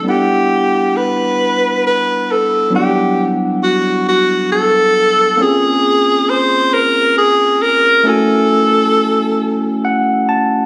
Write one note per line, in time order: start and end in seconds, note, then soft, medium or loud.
0.03 2.67 G3 soft
0.03 2.68 B3 soft
0.03 2.69 D4 soft
0.08 2.69 E4 medium
0.08 0.99 G4 medium
0.08 2.70 F#5 medium
0.97 1.85 B4 medium
1.87 2.33 B4 medium
2.32 2.74 A4 medium
2.70 2.78 F#3 medium
2.70 5.35 B3 medium
2.70 5.35 D4 medium
2.75 5.37 G3 medium
2.75 5.36 E4 soft
2.75 3.32 G4 medium
2.75 5.37 F#5 medium
3.64 4.04 F#4 medium
4.09 4.49 F#4 medium
4.53 5.44 A4 loud
5.37 8.01 A#3 medium
5.37 8.01 C4 medium
5.37 8.02 C#4 medium
5.42 8.03 F4 soft
5.42 6.32 G#4 loud
5.42 8.04 G#4 medium
6.30 6.75 C5 medium
6.74 7.18 A#4 loud
7.18 7.64 G#4 loud
7.63 8.09 A#4 loud
8.03 10.66 A3 medium
8.03 10.66 C#4 medium
8.03 10.66 E4 medium
8.07 10.66 F#4 medium
8.07 9.84 A4 loud
8.07 10.66 G#5 medium
9.85 10.26 F#5 medium
10.29 10.66 A5 medium